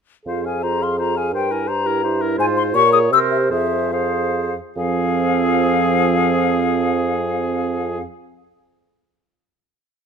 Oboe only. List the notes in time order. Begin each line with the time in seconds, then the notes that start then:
0.27 C5
0.46 F5
0.63 C5
0.81 F5
0.99 C5
1.16 F5
1.34 C5
1.51 A#4
1.68 C5
1.87 A#4
2.04 C5
2.21 A#4
2.38 C5
2.74 C#5
3.13 C5
3.50 C5
3.92 C5
4.78 G#4